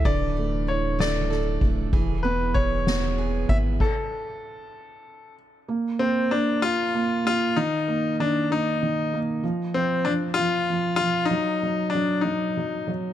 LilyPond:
<<
  \new Staff \with { instrumentName = "Grand piano" } { \time 6/8 \key e \mixolydian \tempo 4. = 64 d''4 cis''8 d''4 r8 | r8 b'8 cis''4. e''8 | a'2~ a'8 r8 | \key ees \lydian r8 c'8 d'8 f'4 f'8 |
ees'4 d'8 ees'4 r8 | r8 c'8 d'8 f'4 f'8 | ees'4 d'8 ees'4 r8 | }
  \new Staff \with { instrumentName = "Steel-string acoustic guitar" } { \time 6/8 \key e \mixolydian <e a'>8 a8 d'8 a8 a'8 d'8 | <e gis'>8 b8 e'8 b8 gis'8 e'8 | r2. | \key ees \lydian r2. |
r2. | r2. | r2. | }
  \new Staff \with { instrumentName = "Felt piano" } { \time 6/8 \key e \mixolydian d8 a8 e'8 a8 a'8 a8 | e8 b8 gis'8 b8 gis'8 b8 | r2. | \key ees \lydian bes8 bes8 bes8 bes8 bes8 bes8 |
ees8 bes8 ees8 bes8 ees8 bes8 | f8 f8 f8 f8 f8 f8 | ges8 ges8 ges8 ges8 ges8 ges8 | }
  \new Staff \with { instrumentName = "Sub bass" } { \clef bass \time 6/8 \key e \mixolydian d,,2~ d,,8 d,,8 | e,,2~ e,,8 gis,,8 | r2. | \key ees \lydian r2. |
r2. | r2. | r2. | }
  \new DrumStaff \with { instrumentName = "Drums" } \drummode { \time 6/8 <bd cymr>8 cymr8 cymr8 <cymr sn>8 <cymr sn>8 <bd cymr>8 | <bd cymr>8 cymr8 bd8 <cymr sn>8 cymr8 <bd cymr>8 | <cymc bd>4. r4. | r4. r4. |
r4. r4. | r4. r4. | r4. r4. | }
>>